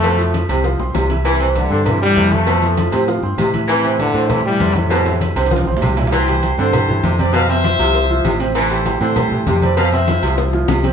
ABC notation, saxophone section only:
X:1
M:4/4
L:1/8
Q:1/4=197
K:Flyd
V:1 name="Saxophone section" clef=bass
B,,3 C,3 C,2 | E,3 D,3 C,2 | B,,3 C,3 C,2 | E,3 D,3 C,2 |
B,,3 C,3 C,2 | E,3 D,3 C,2 | B,,3 C,3 C,2 | E,3 D,3 C,2 |
B,,3 C,3 C,2 |]